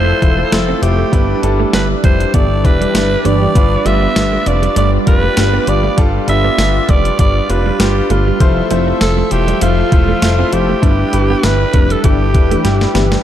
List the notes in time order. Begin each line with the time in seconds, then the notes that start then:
Already playing: F1 F3 A3 E4 F4 G4 A4 C5
0.21 E1 A3 E4 F4 C5, muted clean electric guitar stroke, kick, closed hi-hat
0.38 A3
0.52 F1 A3 E4 F4 A4 C5, snare, closed hi-hat, tambourine
0.69 C4
0.82 F1 A3 E4 F4 G4 C5, muted clean electric guitar stroke, closed hi-hat
0.99 A3
1.12 G1 G2 G3 B3 D4 E4 B4 D5, kick, closed hi-hat
1.42 G1 G3 D4 E4 A4, muted clean electric guitar stroke, closed hi-hat
1.60 A3
1.73 G1 G3 D4 E4 B4, snare, closed hi-hat, tambourine
2.03 F1 G3 D4 E4 B4 C5, kick, closed hi-hat
2.20 closed hi-hat
2.34 G1 E3 G3 B3 D4 E4 G4 A4 D5, kick, closed hi-hat
2.64 E1 G3 D4 E4 B4 D5, muted clean electric guitar stroke, kick, closed hi-hat
2.81 E3 G3 D4 G4, closed hi-hat
2.94 G1 G3 D4 E4 B4, muted clean electric guitar stroke, snare, closed hi-hat, tambourine
3.24 G1 E3 G3 A3 D4 E4 G4 B4 D5, closed hi-hat
3.42 G3
3.55 G1 G2 G3 D4 F4 B4, kick, closed hi-hat
3.72 muted clean electric guitar stroke
3.85 G1 G3 A3 D4 F4 B4 E5, closed hi-hat
4.02 B3
4.15 G1 G3 D4 F4 B4, snare, closed hi-hat, tambourine
4.32 A3
4.46 F1 G3 D4 F4 B4 D5, muted clean electric guitar stroke, closed hi-hat
4.62 G3, closed hi-hat
4.76 G1 G3 A3 D4 F4 B4 D5, closed hi-hat
5.06 F1 G3 D4 F4 B4, muted clean electric guitar stroke, kick, closed hi-hat
5.23 A3
5.37 G1 G3 D4 F4 B4, snare, closed hi-hat, tambourine
5.53 B3
5.67 G1 G3 D4 F4 B4 D5, muted clean electric guitar stroke, closed hi-hat
5.83 A3
5.97 G1 G2 G3 D4 F4 A4, kick, closed hi-hat
6.28 G1 G3 D4 F4 B4 E5, muted clean electric guitar stroke, closed hi-hat
6.45 B3
6.58 G1 G3 D4 F4 B4, snare, closed hi-hat, tambourine
6.88 F1 G3 A3 D4 F4 B4 D5, kick, closed hi-hat
7.05 closed hi-hat
7.19 G1 G3 D4 F4 B4 D5, kick, closed hi-hat
7.49 F1 G3 D4 F4 B4, muted clean electric guitar stroke, closed hi-hat
7.66 G3
7.79 G1 G3 D4 F4 G4 B4, snare, closed hi-hat, tambourine
8.10 G1 G3 A3 D4 F4 B4, closed hi-hat
8.27 G3
8.40 F1 F3 A3 E4 F4 A4 C5 E5, kick, closed hi-hat
8.57 muted clean electric guitar stroke
8.70 F1 A3 E4 F4 C5, closed hi-hat
8.87 C4
9.00 F1 A3 E4 F4 A4 C5, snare, closed hi-hat, tambourine
9.17 A3
9.31 E1 A3 E4 F4 G4 C5, muted clean electric guitar stroke, closed hi-hat
9.48 G3, closed hi-hat
9.61 F1 A3 E4 F4 C5, closed hi-hat
9.91 E1 A3 E4 F4 C5, muted clean electric guitar stroke, kick, closed hi-hat
10.09 A3
10.22 F1 A3 E4 F4 C5, snare, closed hi-hat, tambourine
10.39 C4
10.52 F1 A3 E4 F4 G4 C5, muted clean electric guitar stroke, closed hi-hat
10.69 A3
10.82 G1 G2 G3 D4 E4 B4, kick, closed hi-hat
11.12 G1 G3 D4 E4 B4, muted clean electric guitar stroke, closed hi-hat
11.30 B3
11.42 G1 G3 D4 E4 B4, snare, closed hi-hat, tambourine
11.73 F1 G3 A3 D4 E4 B4, kick, closed hi-hat
11.90 A4, closed hi-hat
12.03 G1 E3 G3 D4 E4 G4 A4, kick, closed hi-hat
12.33 E1 G3 D4 E4 B4, muted clean electric guitar stroke, kick, closed hi-hat
12.51 E3 A3 D4 G4, closed hi-hat
12.64 G1 G3 D4 E4 G4, muted clean electric guitar stroke, snare, closed hi-hat
12.81 snare
12.94 G1 E3 G3 B3 D4 E4 G4 B4, snare, closed hi-hat
13.12 G3, snare